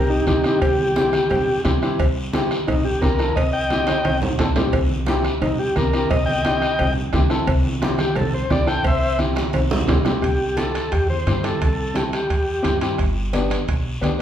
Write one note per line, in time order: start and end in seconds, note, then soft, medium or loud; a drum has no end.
0.00 0.20 C2 loud
0.09 0.26 D#4 medium
0.09 0.27 G4 medium
0.27 0.55 C2 medium
0.27 0.33 C4 medium
0.27 0.42 D#4 medium
0.27 0.33 E4 medium
0.27 0.33 G4 medium
0.27 0.42 G4 medium
0.27 bombo low medium
0.27 bombo rim medium
0.27 high conga medium
0.27 short guiro medium
0.43 0.63 C4 medium
0.43 0.60 D#4 medium
0.43 0.63 E4 medium
0.43 0.60 G4 medium
0.43 0.63 G4 medium
0.43 bombo rim medium
0.43 short guiro medium
0.61 1.17 C2 loud
0.61 1.61 G4 loud
0.61 bombo low medium
0.61 bombo rim medium
0.61 cowbell loud
0.61 long guiro medium
0.79 high conga medium
0.96 1.20 C4 medium
0.96 1.20 E4 medium
0.96 1.20 G4 medium
0.96 bombo rim medium
0.96 high conga medium
0.96 short guiro medium
1.13 bombo rim medium
1.13 high conga medium
1.13 short guiro medium
1.30 1.58 C2 medium
1.30 bombo rim medium
1.30 cowbell medium
1.30 high conga soft
1.30 low conga medium
1.30 long guiro medium
1.64 1.92 C2 loud
1.64 1.70 C4 medium
1.64 1.71 E4 medium
1.64 1.71 G4 loud
1.64 bombo low medium
1.64 bombo rim medium
1.64 high conga medium
1.64 low timbale medium
1.64 short guiro medium
1.82 2.00 C4 medium
1.82 2.00 E4 medium
1.82 2.00 G4 medium
1.82 bombo rim medium
1.82 short guiro medium
1.99 2.54 C2 loud
1.99 bombo low medium
1.99 bombo rim medium
1.99 cowbell medium
1.99 high conga soft
1.99 long guiro medium
2.33 2.57 C4 medium
2.33 2.57 E4 medium
2.33 2.58 G4 loud
2.33 bombo rim medium
2.33 high conga loud
2.33 short guiro medium
2.51 bombo rim medium
2.51 short guiro medium
2.67 2.96 C2 medium
2.67 2.84 D#4 medium
2.67 bombo rim medium
2.67 cowbell medium
2.67 high conga soft
2.67 low conga medium
2.67 long guiro medium
2.85 3.01 G4 medium
3.02 3.30 C2 medium
3.02 3.08 C4 medium
3.02 3.08 E4 medium
3.02 3.08 G4 medium
3.02 3.35 A#4 medium
3.02 bombo low medium
3.02 bombo rim medium
3.02 high conga medium
3.02 short guiro medium
3.19 3.37 C4 medium
3.19 3.37 E4 medium
3.19 3.37 A4 medium
3.19 bombo rim medium
3.19 short guiro medium
3.36 3.92 C2 medium
3.36 3.51 D#5 medium
3.36 bombo low medium
3.36 bombo rim medium
3.36 cowbell loud
3.36 high conga soft
3.36 long guiro medium
3.52 4.17 D#5 medium
3.52 4.20 G5 medium
3.70 3.95 C4 medium
3.70 3.95 E4 medium
3.70 3.96 G4 medium
3.70 bombo rim medium
3.70 high conga medium
3.70 short guiro medium
3.87 bombo rim medium
3.87 high conga medium
3.87 high timbale medium
3.87 short guiro medium
4.05 4.32 C2 medium
4.05 bombo rim medium
4.05 cowbell medium
4.05 high conga medium
4.05 high timbale medium
4.05 long guiro medium
4.22 low conga loud
4.22 high timbale medium
4.39 4.67 C2 medium
4.39 4.45 C4 medium
4.39 4.46 E4 medium
4.39 4.46 A4 medium
4.39 bombo low medium
4.39 bombo rim medium
4.39 low timbale medium
4.39 short guiro medium
4.56 4.74 C4 medium
4.56 4.74 E4 medium
4.56 4.75 G4 medium
4.56 bombo rim medium
4.56 low conga medium
4.56 low timbale loud
4.56 short guiro medium
4.73 5.28 C2 medium
4.73 bombo low medium
4.73 bombo rim medium
4.73 cowbell loud
4.73 high conga soft
4.73 long guiro medium
4.90 high conga medium
5.06 5.32 C4 medium
5.06 5.32 E4 medium
5.06 5.32 G4 loud
5.06 bombo rim medium
5.06 high conga loud
5.06 short guiro medium
5.24 bombo rim medium
5.24 short guiro medium
5.41 5.69 C2 medium
5.41 5.58 D#4 medium
5.41 bombo rim medium
5.41 cowbell medium
5.41 high conga soft
5.41 low conga medium
5.41 long guiro medium
5.59 5.76 G4 medium
5.76 6.04 C2 medium
5.76 5.82 C4 medium
5.76 5.82 E4 medium
5.76 5.82 G4 medium
5.76 6.10 A#4 medium
5.76 bombo low medium
5.76 bombo rim medium
5.76 high conga medium
5.76 short guiro medium
5.93 6.12 C4 medium
5.93 6.12 E4 medium
5.93 6.12 G4 medium
5.93 bombo rim medium
5.93 short guiro medium
6.10 6.66 C2 medium
6.10 6.24 D#5 loud
6.10 bombo low medium
6.10 bombo rim medium
6.10 cowbell loud
6.10 high conga soft
6.10 low conga medium
6.10 long guiro medium
6.26 6.91 D#5 medium
6.26 6.93 G5 medium
6.26 high conga medium
6.45 6.69 C4 medium
6.45 6.69 E4 medium
6.45 6.69 G4 medium
6.45 bombo rim medium
6.45 high conga medium
6.45 short guiro medium
6.62 bombo rim medium
6.62 short guiro medium
6.79 7.07 C2 loud
6.79 bombo rim medium
6.79 cowbell medium
6.79 high conga soft
6.79 low conga medium
6.79 long guiro medium
7.13 7.41 C2 loud
7.13 7.19 C4 medium
7.13 7.19 E4 medium
7.13 7.20 G4 loud
7.13 bombo low medium
7.13 bombo rim medium
7.13 high conga medium
7.13 low timbale medium
7.13 short guiro medium
7.30 7.48 C4 medium
7.30 7.49 E4 medium
7.30 7.49 A4 medium
7.30 bombo rim medium
7.30 short guiro medium
7.47 8.03 C2 medium
7.47 bombo low medium
7.47 bombo rim medium
7.47 cowbell loud
7.47 long guiro medium
7.65 high conga medium
7.82 8.06 C4 medium
7.82 8.06 E4 medium
7.82 8.06 G4 medium
7.82 bombo rim medium
7.82 high conga loud
7.82 short guiro medium
7.98 8.16 G4 medium
7.98 bombo rim medium
7.98 high conga medium
7.98 short guiro medium
8.15 8.44 C2 loud
8.15 8.33 A4 medium
8.15 bombo rim medium
8.15 cowbell medium
8.15 high conga soft
8.15 low conga medium
8.15 long guiro medium
8.34 8.51 C5 medium
8.50 8.78 C2 loud
8.50 8.57 C4 medium
8.50 8.57 E4 medium
8.50 8.57 G4 medium
8.50 8.68 D5 loud
8.50 bombo low medium
8.50 bombo rim medium
8.50 high conga medium
8.50 short guiro medium
8.66 8.85 C4 medium
8.66 8.85 E4 medium
8.66 8.86 A4 medium
8.66 8.85 G5 medium
8.66 bombo rim medium
8.66 short guiro medium
8.84 9.40 C2 loud
8.84 9.18 C5 medium
8.84 9.20 E5 loud
8.84 bombo low medium
8.84 bombo rim medium
8.84 cowbell loud
8.84 high conga soft
8.84 long guiro medium
9.19 9.43 C4 medium
9.19 9.44 E4 medium
9.19 9.44 G4 medium
9.19 bombo rim medium
9.19 high conga medium
9.19 short guiro medium
9.36 bombo rim medium
9.36 high conga medium
9.36 short guiro medium
9.53 9.82 C2 loud
9.53 bombo rim medium
9.53 cowbell medium
9.53 high conga medium
9.53 high timbale medium
9.53 long guiro medium
9.71 low conga loud
9.88 10.16 C2 loud
9.88 9.94 C4 medium
9.88 9.94 E4 medium
9.88 9.94 G4 loud
9.88 bombo low medium
9.88 bombo rim medium
9.88 low conga medium
9.88 low timbale medium
9.88 short guiro medium
10.05 10.23 C4 medium
10.05 10.23 E4 medium
10.05 10.23 G4 medium
10.05 bombo rim medium
10.05 low conga medium
10.05 low timbale medium
10.05 short guiro medium
10.22 10.78 C2 medium
10.22 10.58 G4 medium
10.22 bombo low medium
10.22 bombo rim medium
10.22 high conga soft
10.22 high timbale medium
10.22 long guiro medium
10.57 10.81 C4 medium
10.57 10.82 E4 medium
10.57 10.82 G4 medium
10.57 10.93 A4 medium
10.57 bombo rim medium
10.57 high conga medium
10.57 high timbale medium
10.57 short guiro medium
10.75 bombo rim medium
10.75 high timbale medium
10.75 short guiro medium
10.92 11.20 E2 medium
10.92 11.08 G4 medium
10.92 bombo low medium
10.92 bombo rim medium
10.92 high conga soft
10.92 high timbale medium
10.92 long guiro medium
11.09 11.45 C5 medium
11.09 high conga medium
11.27 11.54 G2 medium
11.27 11.33 C4 medium
11.27 11.33 E4 medium
11.27 11.33 G4 medium
11.27 bombo rim medium
11.27 high conga medium
11.27 high timbale medium
11.27 low timbale medium
11.27 short guiro medium
11.43 11.61 C4 medium
11.43 11.62 E4 medium
11.43 11.62 G4 medium
11.43 11.97 A4 medium
11.43 bombo rim medium
11.43 high conga medium
11.43 high timbale medium
11.43 short guiro medium
11.61 12.17 C2 medium
11.61 bombo low medium
11.61 bombo rim medium
11.61 high conga soft
11.61 high timbale medium
11.61 long guiro medium
11.94 12.19 C4 medium
11.94 12.19 E4 medium
11.94 12.04 G4 medium
11.94 12.19 A4 medium
11.94 bombo rim medium
11.94 high conga medium
11.94 high timbale medium
11.94 short guiro medium
12.13 12.78 G4 medium
12.13 bombo rim medium
12.13 high timbale medium
12.13 short guiro medium
12.30 12.58 E2 medium
12.30 bombo low medium
12.30 bombo rim medium
12.30 high conga soft
12.30 high timbale medium
12.30 long guiro medium
12.62 12.92 G2 medium
12.62 12.69 C4 medium
12.62 12.70 E4 medium
12.62 12.70 G4 medium
12.62 bombo low medium
12.62 bombo rim medium
12.62 high conga medium
12.62 high timbale medium
12.62 short guiro medium
12.81 12.99 C4 medium
12.81 12.99 E4 medium
12.81 12.99 G4 medium
12.81 bombo rim medium
12.81 high timbale medium
12.81 short guiro medium
12.98 13.54 G1 medium
12.98 bombo low medium
12.98 bombo rim medium
12.98 high conga soft
12.98 high timbale medium
12.98 long guiro medium
13.33 13.57 B3 medium
13.33 13.58 D4 medium
13.33 13.58 G4 medium
13.33 bombo rim medium
13.33 high conga medium
13.33 high timbale medium
13.33 short guiro medium
13.50 bombo rim medium
13.50 high timbale medium
13.50 short guiro medium
13.68 13.96 B1 medium
13.68 bombo low medium
13.68 bombo rim medium
13.68 high conga soft
13.68 high timbale medium
13.68 long guiro medium
14.01 14.22 D2 medium
14.01 14.08 B3 medium
14.01 14.08 D4 medium
14.01 14.08 G4 medium
14.01 bombo rim medium
14.01 high conga medium
14.01 high timbale medium
14.01 low timbale medium
14.01 short guiro medium
14.18 14.22 B3 medium